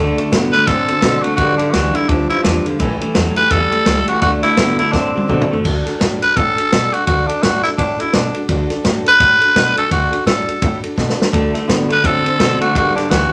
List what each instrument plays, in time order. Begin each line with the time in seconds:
Already playing: upright bass D2, clean electric guitar D3 A3, steel-string acoustic guitar D3 A3 D4 F#4 A4
0.16 clean electric guitar D3 A3, steel-string acoustic guitar D4 F#4 A4, ride
0.30 upright bass A2, steel-string acoustic guitar D3 A3 D4 F#4 A4, clean electric guitar D3 B3, snare, ride
0.52 clean electric guitar D3 A3, steel-string acoustic guitar D4 F#4 A4, tenor saxophone B4, muted upright bass stroke, snare, ride
0.67 upright bass A2, clean electric guitar D3 C4, steel-string acoustic guitar A3 D4 F#4 A4, tenor saxophone A4, kick, snare, ride
0.88 clean electric guitar D3 C4, steel-string acoustic guitar D4 F#4 A4, ride
1.01 upright bass B2, steel-string acoustic guitar D3 A3 D4 F#4 A4, clean electric guitar D3 C4, snare, ride
1.22 clean electric guitar D3 A3, steel-string acoustic guitar D4 F#4 A4, tenor saxophone F#4, muted upright bass stroke, ride
1.36 upright bass G1, clean electric guitar G2 D3, steel-string acoustic guitar G3 D4 G4 B4, tenor saxophone F#4, kick, ride
1.57 clean electric guitar G2 D3, tenor saxophone D4, steel-string acoustic guitar D4 G4 B4, muted upright bass stroke, ride
1.71 upright bass D2, clean electric guitar G2 E3, steel-string acoustic guitar G3 D4 G4 B4, tenor saxophone F#4, snare, ride
1.94 clean electric guitar G2 D3, steel-string acoustic guitar D4 B4, tenor saxophone E4, muted upright bass stroke, ride
2.09 upright bass D2, clean electric guitar G2 F3, steel-string acoustic guitar G3 D4 G4 B4, tenor saxophone D4, kick, ride
2.29 clean electric guitar G2 F3, steel-string acoustic guitar D4 G4 B4, tenor saxophone E4, muted upright bass stroke, ride
2.43 upright bass E2, clean electric guitar G2 F3, steel-string acoustic guitar G3 D4 G4 B4, tenor saxophone D4, snare, ride
2.64 clean electric guitar G2 D3, steel-string acoustic guitar D4 G4 B4, muted upright bass stroke, ride
2.79 upright bass A1, steel-string acoustic guitar A2 E3 G3 C#4 G4 A4, clean electric guitar A2 E3, kick, ride
3.01 clean electric guitar A2 E3, steel-string acoustic guitar G3 C#4 G4 A4, muted upright bass stroke, ride
3.14 upright bass E2, steel-string acoustic guitar A2 E3 G3 C#4 G4 A4, clean electric guitar A2 F#3, snare, ride
3.36 clean electric guitar A2 E3, steel-string acoustic guitar G3 C#4, tenor saxophone B4, muted upright bass stroke, snare, ride
3.50 upright bass E2, clean electric guitar A2 G3, steel-string acoustic guitar G3 C#4 G4 A4, tenor saxophone A4, kick, snare, ride
3.70 clean electric guitar A2 G3, steel-string acoustic guitar G3 C#4 G4 A4, muted upright bass stroke, ride
3.85 upright bass C#2, steel-string acoustic guitar A2 E3 G3 C#4 G4 A4, clean electric guitar A2 G3, snare, ride
4.07 clean electric guitar A2 E3, steel-string acoustic guitar G3 C#4 G4 A4, tenor saxophone F#4, muted upright bass stroke, ride
4.21 upright bass D2, steel-string acoustic guitar D3 A3 D4 F#4 A4, clean electric guitar D3 A3, tenor saxophone F#4, kick, ride
4.43 clean electric guitar D3 A3, steel-string acoustic guitar D4 F#4 A4, tenor saxophone E4, snare, ride
4.57 upright bass A2, clean electric guitar D3 B3, steel-string acoustic guitar D3 A3 D4 F#4 A4, snare, ride
4.79 clean electric guitar D3 A3, steel-string acoustic guitar D4 F#4 A4, tenor saxophone E4, muted upright bass stroke, ride
4.92 upright bass A2, clean electric guitar D3 C4, steel-string acoustic guitar A3 D4 F#4 A4, tenor saxophone D4, kick, snare
5.14 clean electric guitar D3 C4, steel-string acoustic guitar D4 F#4 A4, muted upright bass stroke, high tom
5.27 upright bass B2, steel-string acoustic guitar D3 A3 D4 F#4 A4, clean electric guitar D3 C4, kick, mid tom
5.41 mid tom
5.48 clean electric guitar D3 A3, steel-string acoustic guitar D4 F#4 A4, muted upright bass stroke
5.53 floor tom
5.64 upright bass D2, steel-string acoustic guitar D3 A3 D4 F#4 A4, kick, crash
5.85 steel-string acoustic guitar D4 F#4 A4, snare, ride
5.99 upright bass A2, steel-string acoustic guitar D3 A3 D4 F#4 A4, snare, ride
6.21 steel-string acoustic guitar D4 F#4 A4, tenor saxophone B4, muted upright bass stroke, ride
6.34 upright bass A2, steel-string acoustic guitar A3 D4 F#4 A4, tenor saxophone A4, kick, ride
6.56 steel-string acoustic guitar D4 F#4 A4, muted upright bass stroke, ride
6.72 upright bass B2, steel-string acoustic guitar D3 A3 D4 F#4 A4, snare, ride
6.92 steel-string acoustic guitar D4 F#4 A4, tenor saxophone F#4, muted upright bass stroke, ride
7.07 upright bass D2, steel-string acoustic guitar D3 A3 D4 F#4 A4, tenor saxophone F#4, kick, ride
7.27 tenor saxophone D4, steel-string acoustic guitar F#4 A4, muted upright bass stroke, ride
7.31 steel-string acoustic guitar D4
7.43 upright bass A2, steel-string acoustic guitar D3 A3 D4 F#4 A4, tenor saxophone F#4, snare, ride
7.63 steel-string acoustic guitar D4 F#4 A4, tenor saxophone E4, muted upright bass stroke, snare, ride
7.77 upright bass A2, steel-string acoustic guitar A3 D4 F#4 A4, tenor saxophone D4, kick, ride
7.99 steel-string acoustic guitar D4 F#4 A4, tenor saxophone E4, muted upright bass stroke, ride
8.13 upright bass B2, steel-string acoustic guitar D3 A3 D4 F#4 A4, tenor saxophone D4, snare, ride
8.34 steel-string acoustic guitar D4 F#4 A4, muted upright bass stroke, ride
8.48 upright bass D2, steel-string acoustic guitar D3 A3 D4 F#4 A4, kick, ride
8.70 steel-string acoustic guitar D4 F#4 A4, muted upright bass stroke, snare, ride
8.83 upright bass A2, steel-string acoustic guitar D3 A3 D4 F#4 A4, snare, ride
9.04 steel-string acoustic guitar D4 F#4 A4, muted upright bass stroke, ride
9.08 tenor saxophone B4
9.18 upright bass A2, steel-string acoustic guitar A3 D4 F#4 A4, kick, snare, ride
9.40 steel-string acoustic guitar D4 F#4 A4, muted upright bass stroke, ride
9.54 upright bass B2, steel-string acoustic guitar D3 A3 D4 F#4 A4, snare, ride
9.75 steel-string acoustic guitar D4 F#4 A4, tenor saxophone A4, muted upright bass stroke, ride
9.89 upright bass D2, steel-string acoustic guitar D3 A3 D4 F#4 A4, tenor saxophone F#4, kick, ride
10.10 steel-string acoustic guitar D4 F#4 A4, ride
10.26 upright bass A2, steel-string acoustic guitar D3 A3 D4 F#4 A4, tenor saxophone A4, snare, ride
10.46 steel-string acoustic guitar D4 F#4 A4, muted upright bass stroke, ride
10.61 upright bass A2, steel-string acoustic guitar A3 D4 F#4 A4, kick, ride
10.83 steel-string acoustic guitar D4 F#4 A4, muted upright bass stroke, ride
10.96 upright bass B2, steel-string acoustic guitar D3 A3 D4 F#4 A4, kick, snare
11.10 snare
11.17 steel-string acoustic guitar D4 F#4 A4, muted upright bass stroke
11.22 snare
11.32 upright bass D2, steel-string acoustic guitar D3 A3 D4 F#4 A4, clean electric guitar D3 A3, kick, ride
11.53 clean electric guitar D3 A3, steel-string acoustic guitar D4 F#4 A4, muted upright bass stroke, snare, ride
11.68 upright bass A2, clean electric guitar D3 B3, steel-string acoustic guitar D3 A3 D4 F#4 A4, snare, ride
11.89 clean electric guitar D3 A3, steel-string acoustic guitar D4 F#4 A4, tenor saxophone B4, muted upright bass stroke, ride
12.03 upright bass A2, clean electric guitar D3 C4, steel-string acoustic guitar A3 D4 F#4 A4, tenor saxophone A4, kick, ride
12.24 clean electric guitar D3 C4, steel-string acoustic guitar D4 F#4 A4, muted upright bass stroke, ride
12.39 upright bass B2, clean electric guitar D3 C4, steel-string acoustic guitar D3 A3 D4 F#4 A4, snare, ride
12.60 clean electric guitar D3 A3, steel-string acoustic guitar D4 F#4 A4, tenor saxophone F#4, muted upright bass stroke, ride
12.74 upright bass G1, clean electric guitar G2 D3, steel-string acoustic guitar G3 D4 G4 B4, tenor saxophone F#4, kick, ride
12.95 clean electric guitar G2 D3, tenor saxophone D4, steel-string acoustic guitar D4 G4 B4, muted upright bass stroke, snare, ride
13.10 upright bass D2, clean electric guitar G2 E3, steel-string acoustic guitar G3 D4 G4 B4, tenor saxophone F#4, snare, ride